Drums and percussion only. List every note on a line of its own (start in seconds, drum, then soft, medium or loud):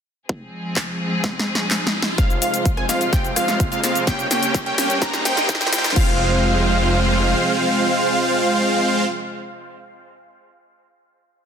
0.29 kick loud
0.76 kick loud
0.76 clap loud
1.24 kick loud
1.24 snare medium
1.39 snare medium
1.55 snare medium
1.71 snare medium
1.71 clap loud
1.87 snare medium
2.02 snare loud
2.18 kick loud
2.18 snare soft
2.18 closed hi-hat medium
2.18 cabasa soft
2.30 closed hi-hat soft
2.30 cabasa soft
2.42 open hi-hat loud
2.42 cabasa medium
2.54 closed hi-hat medium
2.54 cabasa soft
2.65 kick loud
2.65 closed hi-hat medium
2.65 cabasa soft
2.77 cross-stick medium
2.77 closed hi-hat soft
2.89 snare medium
2.89 open hi-hat loud
2.89 cabasa medium
3.01 closed hi-hat soft
3.01 cabasa soft
3.13 kick loud
3.13 snare medium
3.13 closed hi-hat medium
3.13 cabasa soft
3.25 closed hi-hat soft
3.25 cabasa soft
3.36 cross-stick medium
3.36 open hi-hat loud
3.36 cabasa medium
3.48 snare medium
3.48 closed hi-hat medium
3.48 cabasa soft
3.60 kick loud
3.60 closed hi-hat medium
3.60 cabasa soft
3.72 closed hi-hat soft
3.72 cabasa soft
3.84 snare medium
3.84 open hi-hat loud
3.84 cabasa medium
3.95 closed hi-hat medium
3.95 cabasa soft
4.07 kick loud
4.07 snare medium
4.07 closed hi-hat medium
4.07 cabasa soft
4.19 closed hi-hat soft
4.19 cabasa soft
4.31 snare medium
4.31 open hi-hat loud
4.31 cabasa medium
4.43 closed hi-hat medium
4.43 cabasa soft
4.54 kick loud
4.54 snare medium
4.54 closed hi-hat medium
4.54 cabasa soft
4.66 closed hi-hat soft
4.78 snare medium
4.78 open hi-hat loud
4.78 cabasa medium
4.90 closed hi-hat medium
4.90 cabasa soft
5.02 kick loud
5.02 snare medium
5.02 closed hi-hat medium
5.02 cabasa soft
5.14 snare medium
5.14 closed hi-hat soft
5.14 cabasa soft
5.25 snare loud
5.25 open hi-hat loud
5.25 cabasa medium
5.37 snare medium
5.37 closed hi-hat medium
5.37 cabasa soft
5.49 kick loud
5.49 snare loud
5.49 closed hi-hat medium
5.49 cabasa soft
5.55 snare medium
5.61 snare medium
5.61 closed hi-hat soft
5.61 cabasa soft
5.67 snare loud
5.73 snare loud
5.73 open hi-hat loud
5.73 cabasa medium
5.78 snare loud
5.84 snare loud
5.84 closed hi-hat medium
5.84 cabasa soft
5.90 snare loud
5.96 kick loud
5.96 crash medium